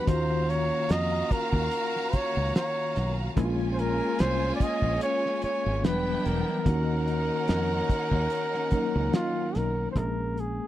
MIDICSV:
0, 0, Header, 1, 8, 480
1, 0, Start_track
1, 0, Tempo, 823045
1, 43, Time_signature, 4, 2, 24, 8
1, 6225, End_track
2, 0, Start_track
2, 0, Title_t, "Flugelhorn"
2, 0, Program_c, 0, 56
2, 48, Note_on_c, 0, 72, 99
2, 288, Note_on_c, 0, 73, 103
2, 297, Note_off_c, 0, 72, 0
2, 537, Note_on_c, 0, 75, 104
2, 546, Note_off_c, 0, 73, 0
2, 770, Note_on_c, 0, 70, 87
2, 779, Note_off_c, 0, 75, 0
2, 1258, Note_on_c, 0, 73, 98
2, 1267, Note_off_c, 0, 70, 0
2, 1488, Note_off_c, 0, 73, 0
2, 1492, Note_on_c, 0, 73, 93
2, 1834, Note_off_c, 0, 73, 0
2, 2178, Note_on_c, 0, 72, 70
2, 2214, Note_on_c, 0, 70, 100
2, 2222, Note_off_c, 0, 72, 0
2, 2453, Note_on_c, 0, 72, 105
2, 2462, Note_off_c, 0, 70, 0
2, 2651, Note_off_c, 0, 72, 0
2, 2656, Note_on_c, 0, 74, 75
2, 2697, Note_on_c, 0, 75, 96
2, 2705, Note_off_c, 0, 74, 0
2, 2931, Note_off_c, 0, 75, 0
2, 2935, Note_on_c, 0, 73, 112
2, 3153, Note_off_c, 0, 73, 0
2, 3173, Note_on_c, 0, 73, 104
2, 3415, Note_on_c, 0, 71, 98
2, 3423, Note_off_c, 0, 73, 0
2, 3654, Note_on_c, 0, 70, 88
2, 3662, Note_off_c, 0, 71, 0
2, 5330, Note_off_c, 0, 70, 0
2, 5336, Note_on_c, 0, 65, 88
2, 5582, Note_on_c, 0, 70, 77
2, 5591, Note_off_c, 0, 65, 0
2, 5777, Note_off_c, 0, 70, 0
2, 5781, Note_on_c, 0, 72, 70
2, 5822, Note_on_c, 0, 70, 83
2, 5831, Note_off_c, 0, 72, 0
2, 6065, Note_on_c, 0, 68, 74
2, 6073, Note_off_c, 0, 70, 0
2, 6225, Note_off_c, 0, 68, 0
2, 6225, End_track
3, 0, Start_track
3, 0, Title_t, "Violin section"
3, 0, Program_c, 1, 48
3, 41, Note_on_c, 1, 77, 80
3, 42, Note_on_c, 1, 66, 89
3, 45, Note_on_c, 1, 82, 97
3, 1940, Note_off_c, 1, 77, 0
3, 1941, Note_off_c, 1, 66, 0
3, 1942, Note_off_c, 1, 82, 0
3, 1960, Note_on_c, 1, 61, 86
3, 1964, Note_on_c, 1, 65, 91
3, 1967, Note_on_c, 1, 80, 100
3, 3379, Note_off_c, 1, 61, 0
3, 3381, Note_off_c, 1, 65, 0
3, 3383, Note_off_c, 1, 80, 0
3, 3408, Note_on_c, 1, 62, 78
3, 3409, Note_on_c, 1, 59, 81
3, 3411, Note_on_c, 1, 79, 91
3, 3877, Note_off_c, 1, 59, 0
3, 3877, Note_off_c, 1, 62, 0
3, 3878, Note_off_c, 1, 79, 0
3, 3881, Note_on_c, 1, 78, 94
3, 3884, Note_on_c, 1, 61, 89
3, 3884, Note_on_c, 1, 70, 86
3, 5781, Note_off_c, 1, 78, 0
3, 5783, Note_off_c, 1, 61, 0
3, 5783, Note_off_c, 1, 70, 0
3, 6225, End_track
4, 0, Start_track
4, 0, Title_t, "String section"
4, 0, Program_c, 2, 48
4, 36, Note_on_c, 2, 51, 75
4, 37, Note_on_c, 2, 61, 65
4, 37, Note_on_c, 2, 77, 79
4, 39, Note_on_c, 2, 58, 67
4, 1942, Note_off_c, 2, 51, 0
4, 1942, Note_off_c, 2, 61, 0
4, 1942, Note_off_c, 2, 77, 0
4, 1943, Note_off_c, 2, 58, 0
4, 1963, Note_on_c, 2, 56, 66
4, 1963, Note_on_c, 2, 61, 78
4, 1963, Note_on_c, 2, 68, 84
4, 1964, Note_on_c, 2, 58, 71
4, 3389, Note_off_c, 2, 56, 0
4, 3390, Note_off_c, 2, 58, 0
4, 3390, Note_off_c, 2, 61, 0
4, 3390, Note_off_c, 2, 68, 0
4, 3399, Note_on_c, 2, 59, 69
4, 3401, Note_on_c, 2, 52, 76
4, 3402, Note_on_c, 2, 62, 68
4, 3403, Note_on_c, 2, 64, 85
4, 3877, Note_off_c, 2, 59, 0
4, 3878, Note_off_c, 2, 52, 0
4, 3879, Note_off_c, 2, 62, 0
4, 3879, Note_off_c, 2, 64, 0
4, 3886, Note_on_c, 2, 61, 64
4, 3887, Note_on_c, 2, 58, 65
4, 3888, Note_on_c, 2, 51, 71
4, 3889, Note_on_c, 2, 63, 84
4, 5788, Note_off_c, 2, 58, 0
4, 5788, Note_off_c, 2, 61, 0
4, 5789, Note_off_c, 2, 51, 0
4, 5789, Note_off_c, 2, 63, 0
4, 6225, End_track
5, 0, Start_track
5, 0, Title_t, "Tine electric piano"
5, 0, Program_c, 3, 4
5, 0, Control_c, 3, 64, 127
5, 41, Note_on_c, 3, 51, 65
5, 45, Note_on_c, 3, 66, 59
5, 47, Note_on_c, 3, 58, 61
5, 50, Control_c, 3, 64, 0
5, 50, Note_on_c, 3, 61, 60
5, 56, Note_on_c, 3, 65, 71
5, 144, Control_c, 3, 64, 127
5, 1940, Note_off_c, 3, 51, 0
5, 1942, Note_off_c, 3, 66, 0
5, 1943, Note_off_c, 3, 58, 0
5, 1945, Note_off_c, 3, 61, 0
5, 1948, Note_off_c, 3, 65, 0
5, 1961, Note_on_c, 3, 61, 82
5, 1966, Note_on_c, 3, 56, 72
5, 1970, Note_on_c, 3, 58, 72
5, 1972, Control_c, 3, 64, 0
5, 1975, Note_on_c, 3, 64, 68
5, 2011, Note_off_c, 3, 64, 0
5, 2014, Note_on_c, 3, 65, 92
5, 2070, Control_c, 3, 64, 127
5, 3380, Note_off_c, 3, 61, 0
5, 3382, Note_off_c, 3, 56, 0
5, 3384, Note_off_c, 3, 58, 0
5, 3402, Note_on_c, 3, 52, 60
5, 3403, Note_on_c, 3, 54, 70
5, 3405, Note_on_c, 3, 59, 58
5, 3406, Note_off_c, 3, 65, 0
5, 3407, Note_on_c, 3, 62, 59
5, 3412, Control_c, 3, 64, 0
5, 3442, Note_on_c, 3, 55, 59
5, 3520, Control_c, 3, 64, 127
5, 3883, Note_off_c, 3, 52, 0
5, 3884, Note_on_c, 3, 51, 66
5, 3885, Note_off_c, 3, 59, 0
5, 3885, Note_on_c, 3, 58, 58
5, 3886, Note_off_c, 3, 62, 0
5, 3887, Note_off_c, 3, 54, 0
5, 3890, Note_on_c, 3, 61, 59
5, 3892, Control_c, 3, 64, 0
5, 3894, Note_on_c, 3, 63, 64
5, 3897, Note_on_c, 3, 66, 77
5, 3904, Note_off_c, 3, 55, 0
5, 3997, Control_c, 3, 64, 127
5, 5062, Note_off_c, 3, 51, 0
5, 5062, Note_off_c, 3, 58, 0
5, 5065, Note_off_c, 3, 61, 0
5, 5067, Note_off_c, 3, 63, 0
5, 5068, Note_off_c, 3, 66, 0
5, 5086, Note_on_c, 3, 54, 60
5, 5088, Note_on_c, 3, 58, 56
5, 5089, Note_on_c, 3, 63, 56
5, 5091, Note_on_c, 3, 61, 53
5, 5093, Note_on_c, 3, 70, 67
5, 5797, Note_off_c, 3, 58, 0
5, 5800, Note_on_c, 3, 48, 49
5, 5804, Note_on_c, 3, 58, 53
5, 5807, Note_off_c, 3, 54, 0
5, 5808, Note_off_c, 3, 63, 0
5, 5809, Note_off_c, 3, 61, 0
5, 5809, Note_on_c, 3, 56, 55
5, 5810, Note_off_c, 3, 70, 0
5, 5813, Note_on_c, 3, 68, 59
5, 5814, Control_c, 3, 64, 0
5, 5836, Note_on_c, 3, 61, 57
5, 5844, Note_off_c, 3, 48, 0
5, 5900, Control_c, 3, 64, 127
5, 6225, Note_off_c, 3, 56, 0
5, 6225, Note_off_c, 3, 58, 0
5, 6225, Note_off_c, 3, 61, 0
5, 6225, Note_off_c, 3, 68, 0
5, 6225, End_track
6, 0, Start_track
6, 0, Title_t, "Fingered electric bass"
6, 0, Program_c, 4, 33
6, 47, Note_on_c, 4, 39, 102
6, 411, Note_off_c, 4, 39, 0
6, 527, Note_on_c, 4, 41, 89
6, 708, Note_off_c, 4, 41, 0
6, 894, Note_on_c, 4, 39, 98
6, 978, Note_off_c, 4, 39, 0
6, 1381, Note_on_c, 4, 37, 83
6, 1462, Note_off_c, 4, 37, 0
6, 1732, Note_on_c, 4, 35, 80
6, 1912, Note_off_c, 4, 35, 0
6, 1967, Note_on_c, 4, 34, 127
6, 2331, Note_off_c, 4, 34, 0
6, 2451, Note_on_c, 4, 36, 97
6, 2631, Note_off_c, 4, 36, 0
6, 2816, Note_on_c, 4, 34, 88
6, 2899, Note_off_c, 4, 34, 0
6, 3303, Note_on_c, 4, 32, 83
6, 3412, Note_off_c, 4, 32, 0
6, 3412, Note_on_c, 4, 28, 104
6, 3592, Note_off_c, 4, 28, 0
6, 3651, Note_on_c, 4, 28, 81
6, 3747, Note_off_c, 4, 28, 0
6, 3887, Note_on_c, 4, 39, 108
6, 4251, Note_off_c, 4, 39, 0
6, 4370, Note_on_c, 4, 41, 93
6, 4551, Note_off_c, 4, 41, 0
6, 4737, Note_on_c, 4, 39, 91
6, 4820, Note_off_c, 4, 39, 0
6, 5223, Note_on_c, 4, 37, 84
6, 5304, Note_off_c, 4, 37, 0
6, 5575, Note_on_c, 4, 35, 76
6, 5754, Note_off_c, 4, 35, 0
6, 5810, Note_on_c, 4, 34, 107
6, 6175, Note_off_c, 4, 34, 0
6, 6225, End_track
7, 0, Start_track
7, 0, Title_t, "Muted fingered electric bass strokes"
7, 1249, Note_on_c, 9, 29, 49
7, 1307, Note_off_c, 9, 29, 0
7, 3170, Note_on_c, 9, 29, 48
7, 3229, Note_off_c, 9, 29, 0
7, 5088, Note_on_c, 9, 29, 45
7, 5146, Note_off_c, 9, 29, 0
7, 6225, End_track
8, 0, Start_track
8, 0, Title_t, "Drums"
8, 43, Note_on_c, 9, 42, 94
8, 44, Note_on_c, 9, 36, 114
8, 101, Note_off_c, 9, 42, 0
8, 102, Note_off_c, 9, 36, 0
8, 290, Note_on_c, 9, 42, 70
8, 349, Note_off_c, 9, 42, 0
8, 520, Note_on_c, 9, 42, 91
8, 528, Note_on_c, 9, 38, 109
8, 578, Note_off_c, 9, 42, 0
8, 587, Note_off_c, 9, 38, 0
8, 763, Note_on_c, 9, 36, 90
8, 765, Note_on_c, 9, 42, 67
8, 822, Note_off_c, 9, 36, 0
8, 823, Note_off_c, 9, 42, 0
8, 890, Note_on_c, 9, 36, 84
8, 949, Note_off_c, 9, 36, 0
8, 999, Note_on_c, 9, 42, 96
8, 1058, Note_off_c, 9, 42, 0
8, 1143, Note_on_c, 9, 38, 36
8, 1202, Note_off_c, 9, 38, 0
8, 1241, Note_on_c, 9, 42, 69
8, 1245, Note_on_c, 9, 36, 85
8, 1299, Note_off_c, 9, 42, 0
8, 1304, Note_off_c, 9, 36, 0
8, 1490, Note_on_c, 9, 42, 84
8, 1492, Note_on_c, 9, 38, 109
8, 1549, Note_off_c, 9, 42, 0
8, 1551, Note_off_c, 9, 38, 0
8, 1726, Note_on_c, 9, 42, 72
8, 1728, Note_on_c, 9, 38, 39
8, 1784, Note_off_c, 9, 42, 0
8, 1787, Note_off_c, 9, 38, 0
8, 1964, Note_on_c, 9, 36, 115
8, 1964, Note_on_c, 9, 42, 95
8, 2022, Note_off_c, 9, 42, 0
8, 2023, Note_off_c, 9, 36, 0
8, 2209, Note_on_c, 9, 42, 71
8, 2268, Note_off_c, 9, 42, 0
8, 2442, Note_on_c, 9, 42, 90
8, 2451, Note_on_c, 9, 38, 115
8, 2500, Note_off_c, 9, 42, 0
8, 2509, Note_off_c, 9, 38, 0
8, 2685, Note_on_c, 9, 36, 90
8, 2687, Note_on_c, 9, 42, 69
8, 2743, Note_off_c, 9, 36, 0
8, 2745, Note_off_c, 9, 42, 0
8, 2812, Note_on_c, 9, 36, 80
8, 2870, Note_off_c, 9, 36, 0
8, 2923, Note_on_c, 9, 42, 105
8, 2981, Note_off_c, 9, 42, 0
8, 3066, Note_on_c, 9, 38, 33
8, 3124, Note_off_c, 9, 38, 0
8, 3159, Note_on_c, 9, 42, 71
8, 3218, Note_off_c, 9, 42, 0
8, 3408, Note_on_c, 9, 42, 81
8, 3410, Note_on_c, 9, 38, 111
8, 3466, Note_off_c, 9, 42, 0
8, 3468, Note_off_c, 9, 38, 0
8, 3648, Note_on_c, 9, 42, 74
8, 3650, Note_on_c, 9, 38, 37
8, 3706, Note_off_c, 9, 42, 0
8, 3709, Note_off_c, 9, 38, 0
8, 3884, Note_on_c, 9, 36, 115
8, 3884, Note_on_c, 9, 42, 96
8, 3942, Note_off_c, 9, 36, 0
8, 3943, Note_off_c, 9, 42, 0
8, 4127, Note_on_c, 9, 42, 71
8, 4185, Note_off_c, 9, 42, 0
8, 4360, Note_on_c, 9, 42, 91
8, 4369, Note_on_c, 9, 38, 110
8, 4418, Note_off_c, 9, 42, 0
8, 4427, Note_off_c, 9, 38, 0
8, 4604, Note_on_c, 9, 36, 93
8, 4606, Note_on_c, 9, 42, 69
8, 4662, Note_off_c, 9, 36, 0
8, 4664, Note_off_c, 9, 42, 0
8, 4732, Note_on_c, 9, 36, 80
8, 4791, Note_off_c, 9, 36, 0
8, 4841, Note_on_c, 9, 42, 97
8, 4899, Note_off_c, 9, 42, 0
8, 4983, Note_on_c, 9, 38, 38
8, 5041, Note_off_c, 9, 38, 0
8, 5077, Note_on_c, 9, 42, 67
8, 5085, Note_on_c, 9, 36, 88
8, 5135, Note_off_c, 9, 42, 0
8, 5143, Note_off_c, 9, 36, 0
8, 5326, Note_on_c, 9, 42, 83
8, 5328, Note_on_c, 9, 38, 114
8, 5385, Note_off_c, 9, 42, 0
8, 5387, Note_off_c, 9, 38, 0
8, 5569, Note_on_c, 9, 42, 73
8, 5572, Note_on_c, 9, 38, 37
8, 5628, Note_off_c, 9, 42, 0
8, 5630, Note_off_c, 9, 38, 0
8, 5807, Note_on_c, 9, 36, 98
8, 5807, Note_on_c, 9, 42, 79
8, 5865, Note_off_c, 9, 36, 0
8, 5866, Note_off_c, 9, 42, 0
8, 6051, Note_on_c, 9, 42, 61
8, 6109, Note_off_c, 9, 42, 0
8, 6225, End_track
0, 0, End_of_file